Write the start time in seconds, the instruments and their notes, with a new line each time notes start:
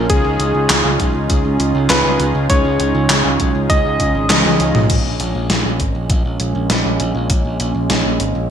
Already playing: analog synth pad C#4 F4
0.10 picked electric bass C#2, analog synth pad C#3 D#4, analog polysynth G#3 C#4 D#4 F4 G#4, electric grand piano G#4, kick, closed hi-hat
0.24 picked electric bass C#2
0.39 picked electric bass C#2, closed hi-hat
0.54 picked electric bass C#2
0.70 picked electric bass C#2, snare, clap, closed hi-hat
0.84 picked electric bass C#2
1.00 picked electric bass B1, kick, closed hi-hat
1.15 picked electric bass C#2
1.30 picked electric bass C#2, kick, closed hi-hat
1.45 picked electric bass C#2
1.60 picked electric bass C#2, closed hi-hat
1.75 picked electric bass C#2
1.90 picked electric bass C#2, analog polysynth G#3 C#4 D#4 F4 G#4, electric grand piano B4, snare, clap, closed hi-hat
2.05 picked electric bass C#2
2.20 picked electric bass C#2, closed hi-hat
2.35 picked electric bass C#2
2.50 picked electric bass C#2, analog polysynth G#3 C#4 D#4 F4 G#4, electric grand piano C#5, kick, closed hi-hat
2.65 picked electric bass C#2
2.80 picked electric bass C#2, closed hi-hat
2.95 picked electric bass C#2
3.10 picked electric bass C#2, snare, clap, closed hi-hat
3.25 picked electric bass C#2
3.40 picked electric bass B1, kick, closed hi-hat
3.55 picked electric bass C#2
3.70 picked electric bass C#2, electric grand piano D#5, kick, closed hi-hat
3.85 picked electric bass C#2
4.00 picked electric bass C#2, kick, closed hi-hat
4.15 picked electric bass G#1
4.30 picked electric bass C#2, analog polysynth G#3 C#4 D#4 F4 G#4, snare, clap, closed hi-hat, high tom
4.45 picked electric bass C#2, high tom
4.60 picked electric bass C#2, closed hi-hat
4.75 picked electric bass B1, mid tom
4.90 picked electric bass A#1, analog synth pad G#3 A#3 C#4, kick, closed hi-hat, crash
5.05 picked electric bass A#1
5.20 picked electric bass A#1, closed hi-hat
5.35 picked electric bass A#1
5.50 picked electric bass A#1, snare, closed hi-hat
5.65 picked electric bass A#1
5.80 picked electric bass G#1, kick, closed hi-hat
5.95 picked electric bass A#1
6.10 picked electric bass A#1, kick, closed hi-hat
6.25 picked electric bass A#1
6.40 picked electric bass A#1, closed hi-hat
6.55 picked electric bass A#1
6.70 picked electric bass A#1, snare, closed hi-hat
6.85 picked electric bass A#1
7.00 picked electric bass A#1, closed hi-hat
7.15 picked electric bass A#1
7.30 picked electric bass A#1, kick, closed hi-hat
7.45 picked electric bass A#1
7.60 picked electric bass A#1, closed hi-hat
7.75 picked electric bass A#1
7.90 picked electric bass A#1, snare, closed hi-hat
8.05 picked electric bass A#1
8.20 picked electric bass G#1, closed hi-hat
8.35 picked electric bass A#1